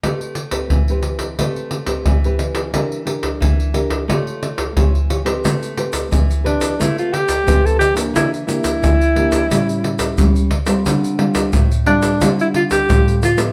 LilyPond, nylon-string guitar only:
\new Staff \with { instrumentName = "Nylon-string guitar" } { \time 4/4 \key a \minor \tempo 4 = 89 << { <c' g' b'>8 r16 <c' g' b'>8 <c' g' b'>8. <c' g' b'>8. <c' g' b'>8 <c' g' b'>8. | <d' g' bes'>8 <d' g' bes'>4 <d' g' bes'>8 <f' g' cis''>4 <f' g' cis''>16 r16 <f' g' cis''>16 <c' g' b'>16~ | <c' g' b'>8 <c' g' b'>4 <c' g' b'>8 <c' g' b'>8. r16 <c' g' b'>8. <bes d' g'>16~ | <bes d' g'>8 <bes d' g'>8. r16 <bes d' g'>8 <g cis'>4 <g cis'>8 r16 <g c' f'>16~ |
<g c' f'>8 <g c' f'>8. r16 <g c' f'>8 <g c' f'>4 <g c' f'>8 r16 <f b e'>16 | } \\ { a4 e4 a4 e4 | e4 e4 a4 e4 | a4 e4 a4 e4 | e4 e4 a,4 r4 |
d4 a,4 d4 a,4 | } >> }